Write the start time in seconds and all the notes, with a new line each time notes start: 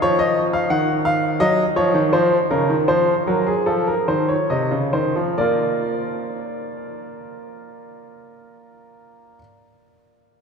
0.02 F3 C#5
0.19 D#5
0.53 F5
0.70 D#3 F#5
1.05 F5
1.40 F#3 D#5
1.76 F3 C#5
1.94 D#3
2.13 F3 C5
2.51 C#3 A#4
2.69 D#3
2.88 F3 C5
3.27 F#3 A#4
3.47 G#4
3.66 F3 A4
3.87 A#4
4.08 D#3 C5
4.29 C#5
4.50 C3 D#5
4.71 C#3
4.93 D#3 C5
5.16 F3
5.38 A#3 F4 A#4 D5